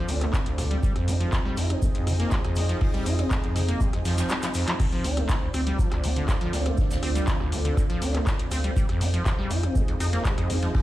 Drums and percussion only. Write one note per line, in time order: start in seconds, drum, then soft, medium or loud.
0.08 open hi-hat medium
0.08 shaker medium
0.21 cross-stick medium
0.21 clap soft
0.21 closed hi-hat medium
0.33 kick loud
0.33 snare loud
0.33 clap loud
0.33 shaker medium
0.46 closed hi-hat medium
0.58 cross-stick medium
0.58 snare medium
0.58 open hi-hat loud
0.58 shaker medium
0.71 closed hi-hat medium
0.83 kick loud
0.83 shaker medium
0.96 cross-stick medium
0.96 closed hi-hat soft
1.08 open hi-hat medium
1.08 shaker medium
1.21 closed hi-hat medium
1.32 kick loud
1.32 cross-stick medium
1.32 snare loud
1.32 clap loud
1.32 shaker medium
1.57 open hi-hat loud
1.57 shaker medium
1.70 cross-stick medium
1.70 closed hi-hat medium
1.82 kick loud
1.82 shaker medium
1.95 closed hi-hat medium
2.07 cross-stick medium
2.07 open hi-hat medium
2.07 shaker medium
2.19 snare medium
2.19 closed hi-hat medium
2.31 kick loud
2.31 snare loud
2.31 clap loud
2.31 shaker medium
2.45 cross-stick medium
2.45 closed hi-hat medium
2.55 open hi-hat medium
2.55 shaker medium
2.69 snare soft
2.69 closed hi-hat medium
2.81 kick loud
2.81 cross-stick medium
2.81 open hi-hat medium
2.93 snare soft
2.93 closed hi-hat soft
3.06 open hi-hat medium
3.06 shaker medium
3.19 cross-stick medium
3.19 closed hi-hat medium
3.31 kick loud
3.31 snare loud
3.31 clap loud
3.31 shaker medium
3.44 closed hi-hat soft
3.55 cross-stick medium
3.55 snare soft
3.55 open hi-hat loud
3.55 shaker medium
3.68 closed hi-hat medium
3.80 kick loud
3.80 shaker medium
3.93 cross-stick medium
3.93 closed hi-hat medium
4.05 snare medium
4.05 open hi-hat medium
4.05 shaker medium
4.17 snare loud
4.17 clap soft
4.17 closed hi-hat medium
4.17 shaker medium
4.29 cross-stick medium
4.29 snare loud
4.29 clap loud
4.29 shaker medium
4.42 snare medium
4.42 clap medium
4.42 closed hi-hat medium
4.42 shaker medium
4.54 snare medium
4.54 open hi-hat loud
4.54 shaker medium
4.68 clap medium
4.68 closed hi-hat medium
4.80 kick loud
4.80 cross-stick medium
4.80 crash medium
4.80 shaker medium
4.92 closed hi-hat soft
5.04 open hi-hat loud
5.04 shaker medium
5.17 cross-stick medium
5.17 closed hi-hat medium
5.29 kick loud
5.29 snare loud
5.29 clap loud
5.29 shaker medium
5.54 cross-stick medium
5.54 open hi-hat loud
5.54 shaker medium
5.67 closed hi-hat medium
5.79 kick loud
5.79 shaker medium
5.92 cross-stick medium
5.92 clap soft
5.92 closed hi-hat medium
6.04 open hi-hat medium
6.04 shaker medium
6.16 closed hi-hat medium
6.28 kick loud
6.28 cross-stick medium
6.28 snare loud
6.28 clap loud
6.28 shaker medium
6.41 closed hi-hat medium
6.53 snare loud
6.53 open hi-hat loud
6.53 shaker medium
6.66 cross-stick medium
6.66 closed hi-hat medium
6.77 kick loud
6.77 snare soft
6.77 shaker medium
6.91 snare loud
6.91 closed hi-hat soft
6.91 shaker medium
7.03 cross-stick medium
7.03 open hi-hat loud
7.15 snare soft
7.15 closed hi-hat medium
7.15 shaker medium
7.27 kick loud
7.27 snare loud
7.27 clap loud
7.27 shaker medium
7.40 cross-stick medium
7.52 snare soft
7.52 open hi-hat loud
7.52 shaker medium
7.65 closed hi-hat medium
7.77 kick loud
7.77 cross-stick medium
7.77 shaker medium
7.90 closed hi-hat medium
8.02 open hi-hat loud
8.02 shaker medium
8.15 cross-stick medium
8.15 clap soft
8.15 closed hi-hat medium
8.27 kick loud
8.27 snare loud
8.27 clap loud
8.27 shaker medium
8.39 closed hi-hat medium
8.51 cross-stick medium
8.51 snare medium
8.51 open hi-hat loud
8.51 shaker medium
8.64 closed hi-hat medium
8.76 kick loud
8.76 shaker medium
8.89 cross-stick medium
8.89 closed hi-hat soft
9.01 open hi-hat loud
9.01 shaker medium
9.14 closed hi-hat medium
9.26 kick loud
9.26 cross-stick medium
9.26 snare loud
9.26 clap loud
9.26 shaker medium
9.50 open hi-hat loud
9.50 shaker medium
9.63 cross-stick medium
9.63 closed hi-hat medium
9.75 kick loud
9.75 shaker medium
9.88 closed hi-hat medium
10.00 cross-stick medium
10.00 open hi-hat loud
10.00 shaker medium
10.13 snare soft
10.13 closed hi-hat medium
10.25 kick loud
10.25 snare loud
10.25 clap loud
10.25 shaker medium
10.38 cross-stick medium
10.38 closed hi-hat soft
10.50 open hi-hat loud
10.50 shaker medium
10.62 snare soft
10.62 closed hi-hat medium
10.74 kick loud
10.74 cross-stick medium
10.74 open hi-hat medium